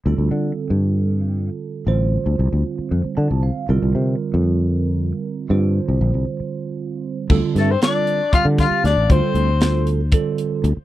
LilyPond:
<<
  \new Staff \with { instrumentName = "Soprano saxophone" } { \time 7/8 \key d \phrygian \tempo 4 = 116 r2. r8 | r2. r8 | r2. r8 | r2. r8 |
r8 a'16 c''16 d''4 f''8 f''8 d''8 | c''4. r2 | }
  \new Staff \with { instrumentName = "Tenor saxophone" } { \time 7/8 \key d \phrygian r2. r8 | r2. r8 | r2. r8 | r2. r8 |
r8 a16 c'16 d'4 f'8 f'8 d'8 | c'4. r2 | }
  \new Staff \with { instrumentName = "Tine electric piano" } { \time 7/8 \key d \phrygian << { r2. r8 | r2 r8 a''8 f''8 | r2. r8 | r2. r8 |
r2. r8 | r2. r8 | } \\ { <d g c' f' a'>2.~ <d g c' f' a'>8 | <d g c' f' c''>2.~ <d g c' f' c''>8 | <d g c' f' bes'>2.~ <d g c' f' bes'>8 | <d g c' f' c''>2.~ <d g c' f' c''>8 |
<d g c' f' a'>8 r8 <d g c' f' a'>8 r8 <d g c' f' g'>4 r8 | <d g c' f' a'>8 r8 <d g c' f' a'>8 r8 <d g c' f' a'>4 r8 | } >> }
  \new Staff \with { instrumentName = "Fretless electric bass" } { \clef bass \time 7/8 \key d \phrygian d,16 d,16 d8 r16 g,2 r16 | a,,8. d,16 c,16 d,16 r8 f,16 r16 d16 c,8 r16 | c,16 c,16 c8 r16 f,2 r16 | g,8. c,16 bes,,16 c,16 r2 |
d,16 r16 g,8 r4 r16 d8 r16 d,16 a,,16 | d,16 r16 d,2 r8 d,16 r16 | }
  \new DrumStaff \with { instrumentName = "Drums" } \drummode { \time 7/8 r4 r4 r4. | r4 r4 r4. | r4 r4 r4. | r4 r4 r4. |
<cymc bd>8 <hh sn>8 <hh sn>8 hh8 <hh bd>8 <hh bd sn>8 <hh sn>8 | <hh bd>8 hh8 <hh sn>8 hh8 <hh bd>8 hh8 hh8 | }
>>